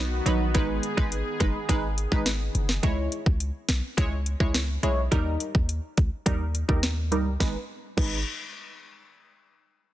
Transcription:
Already playing: 808-style bass B1, analog synth pad D#3 B3 F#4
0.26 808-style bass A#1, synth stab F#3 D#4 B4, closed hi-hat
0.54 808-style bass G#1, synth stab G#3 D#4 B4, analog synth pad G#4, kick, closed hi-hat
0.83 closed hi-hat
0.97 808-style bass G#1, synth stab G#3 D#4 B4, kick
1.12 closed hi-hat
1.40 808-style bass F#1, synth stab G#3 D#4 B4, kick, closed hi-hat
1.69 808-style bass G#1, synth stab G#3 D#4 B4, kick, closed hi-hat
1.98 closed hi-hat
2.12 808-style bass G#1, synth stab G#3 D#4 B4, kick
2.26 snare, closed hi-hat
2.55 808-style bass F#1, closed hi-hat
2.69 snare
2.83 808-style bass C#2, synth stab G#3 E4 C#5, kick, closed hi-hat
3.12 closed hi-hat
3.26 808-style bass C#2, kick
3.40 closed hi-hat
3.69 808-style bass B1, snare, closed hi-hat
3.97 808-style bass C#2, synth stab G#3 E4 C#5, kick, closed hi-hat
4.26 closed hi-hat
4.40 808-style bass C#2, synth stab G#3 E4 C#5, kick
4.54 snare, closed hi-hat
4.83 808-style bass B1, synth stab G#3 E4 C#5, closed hi-hat
5.11 808-style bass D#2, synth stab G3 D#4 A#4, kick, closed hi-hat
5.40 closed hi-hat
5.55 808-style bass D#2, kick
5.69 closed hi-hat
5.97 808-style bass C#2, kick, closed hi-hat
6.26 808-style bass D#2, synth stab G3 D#4 A#4, kick, closed hi-hat
6.55 closed hi-hat
6.68 808-style bass D#2, synth stab G3 D#4 A#4, kick
6.83 snare, closed hi-hat
7.12 808-style bass C#2, synth stab G3 D#4 A#4, closed hi-hat
7.40 808-style bass G#1, synth stab G#3 D#4 B4, kick, snare
7.97 808-style bass G#1, synth stab G#3 D#4 B4, kick, crash

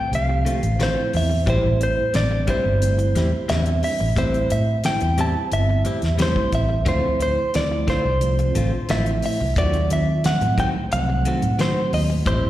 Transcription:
Already playing: clean electric guitar G5
0.12 fingered electric bass C2, tine electric piano F3 A3 C4 G4, clean electric guitar F5, closed hi-hat
0.29 muted clean electric guitar stroke
0.45 clean electric guitar D3 A3 C4 F4, closed hi-hat
0.62 fingered electric bass A1, muted clean electric guitar stroke, closed hi-hat
0.80 clean electric guitar D3 A3 C4 F4 C5, tine electric piano F3 A3 C4 E4, snare, closed hi-hat
1.13 fingered electric bass E2, clean electric guitar E5, muted clean electric guitar stroke, open hi-hat
1.30 muted clean electric guitar stroke
1.46 fingered electric bass A1, clean electric guitar A2 G3 C4 E4 C5, tine electric piano G3 A3 C4 E4, kick, closed hi-hat
1.64 fingered electric bass A1
1.81 clean electric guitar C5, muted clean electric guitar stroke, closed hi-hat
2.13 fingered electric bass A1, tine electric piano G3 B3 C4 D4, clean electric guitar D5, muted clean electric guitar stroke, snare, closed hi-hat
2.31 muted clean electric guitar stroke
2.47 clean electric guitar A2 G3 C4 E4 C5, kick, closed hi-hat
2.65 fingered electric bass G1, muted clean electric guitar stroke
2.81 tine electric piano G3 A3 C4 E4, closed hi-hat
2.98 muted clean electric guitar stroke, closed hi-hat
3.15 fingered electric bass E2, clean electric guitar A2 G3 C4 E4, snare, closed hi-hat
3.32 muted clean electric guitar stroke
3.48 fingered electric bass E2, clean electric guitar A2 G3 C4 E4 E5, tine electric piano G3 B3 C4 D4, snare, closed hi-hat
3.66 closed hi-hat
3.83 clean electric guitar E5, muted clean electric guitar stroke, open hi-hat
4.00 fingered electric bass A1, muted clean electric guitar stroke
4.16 clean electric guitar A2 G3 C4 E4 C5, tine electric piano G3 A3 C4 E4, kick, closed hi-hat
4.34 closed hi-hat
4.50 fingered electric bass A2, clean electric guitar E5, muted clean electric guitar stroke, closed hi-hat
4.84 tine electric piano G3 B3 C4 E4, clean electric guitar G5, muted clean electric guitar stroke, snare, closed hi-hat
5.00 fingered electric bass E2, muted clean electric guitar stroke, closed hi-hat
5.18 clean electric guitar A2 G3 C4 E4 A5, closed hi-hat
5.36 muted clean electric guitar stroke
5.52 fingered electric bass G1, tine electric piano G3 B3 C4 E4, clean electric guitar E5, closed hi-hat
5.69 muted clean electric guitar stroke
5.85 clean electric guitar A2 G3 C4 E4, closed hi-hat
6.02 fingered electric bass E2, muted clean electric guitar stroke, snare, closed hi-hat
6.18 clean electric guitar A2 G3 C4 E4, tine electric piano G3 A3 C4 E4, snare, closed hi-hat
6.22 clean electric guitar C5
6.36 kick
6.52 fingered electric bass A1, clean electric guitar E5, muted clean electric guitar stroke, kick, closed hi-hat
6.69 muted clean electric guitar stroke
6.85 fingered electric bass D2, clean electric guitar D3 A3 C4 F4 C5, tine electric piano F3 A3 C4 E4, kick, closed hi-hat
7.05 fingered electric bass D2
7.20 clean electric guitar C5, muted clean electric guitar stroke, closed hi-hat
7.54 fingered electric bass D2, tine electric piano F3 A3 C4 E4, clean electric guitar D5, muted clean electric guitar stroke, snare, closed hi-hat
7.71 muted clean electric guitar stroke
7.87 clean electric guitar D3 A3 C4 F4 C5, kick, snare, closed hi-hat
8.05 fingered electric bass C2, muted clean electric guitar stroke
8.21 tine electric piano F3 A3 C4 F4, closed hi-hat
8.39 muted clean electric guitar stroke, closed hi-hat
8.55 fingered electric bass A1, clean electric guitar D3 A3 C4 F4, closed hi-hat
8.73 muted clean electric guitar stroke
8.89 fingered electric bass A1, clean electric guitar D3 A3 C4 F4 E5, tine electric piano F3 A3 C4 E4, snare, closed hi-hat
9.06 closed hi-hat
9.22 clean electric guitar E5, muted clean electric guitar stroke, open hi-hat
9.40 fingered electric bass C2, muted clean electric guitar stroke
9.56 clean electric guitar D#3 A3 C4 F#4 D5, tine electric piano F#3 A3 C4 F4, kick, closed hi-hat
9.73 closed hi-hat
9.90 fingered electric bass D#3, clean electric guitar E5, muted clean electric guitar stroke, closed hi-hat
10.24 tine electric piano F3 F#3 A3 C4, clean electric guitar F#5, muted clean electric guitar stroke, snare, closed hi-hat
10.41 fingered electric bass A2, muted clean electric guitar stroke, closed hi-hat
10.58 clean electric guitar D#3 A3 C4 F#4 G5, kick, closed hi-hat
10.75 muted clean electric guitar stroke
10.92 fingered electric bass C2, tine electric piano F3 F#3 A3 C4, clean electric guitar F#5, closed hi-hat
11.09 muted clean electric guitar stroke
11.25 clean electric guitar D#3 A3 C4 F#4, closed hi-hat
11.42 fingered electric bass A2, muted clean electric guitar stroke, closed hi-hat
11.59 clean electric guitar D#3 A3 C4 F#4 C5, tine electric piano F#3 A3 C4 F#4, snare, closed hi-hat
11.93 fingered electric bass D#2, clean electric guitar D#5, muted clean electric guitar stroke, open hi-hat
12.10 muted clean electric guitar stroke
12.26 fingered electric bass A1, clean electric guitar A2 G3 C4 E4 C5, tine electric piano G3 A3 C4 E4, kick, closed hi-hat
12.45 fingered electric bass A1

